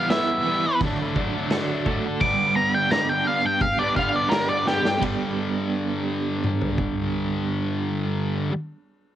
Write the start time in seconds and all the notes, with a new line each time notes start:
Already playing: E3 G3 B3 E4 F5
0.10 E3 G3 B3 E5, snare, open hi-hat
0.15 E4
0.45 E3 G3 B3 E4
0.65 muted distorted electric guitar stroke
0.81 D3 F#3 A3, kick, open hi-hat
0.86 D4
1.00 F#3 A3 D4
1.16 D3 F#3 D4, kick
1.21 A3 D4
1.35 F#3 A3 D4
1.51 D3 F#3 A3 F#4, snare, open hi-hat
1.55 D4
1.86 D3 F#3 A3 D4, kick
2.06 muted distorted electric guitar stroke
2.21 G2 D3 G3 B3 D6, kick, open hi-hat
2.25 D4
2.56 B3 A#5
2.74 G3 B3 D4 G5
2.90 G2 D3 G3 B3 A#5, snare, open hi-hat
2.95 D4
3.09 G5
3.25 D3 G3 B3 D4 F5
3.43 G5, muted distorted electric guitar stroke
3.61 G4 F5, kick, open hi-hat
3.78 G3 B3 D4 D5
3.95 D3 G3 B3 D4 F5, kick
4.13 G3 B3 D4 D5
4.29 G2 D3 G3 B3 G4 A#4, snare, open hi-hat
4.34 D4
4.48 D5
4.66 D3 G3 B3 D4 G4, snare
4.83 muted distorted electric guitar stroke, snare
4.99 G2 D3 G3 B3, kick, ride
5.03 D4 G4
6.44 mid tom
6.61 floor tom
6.78 kick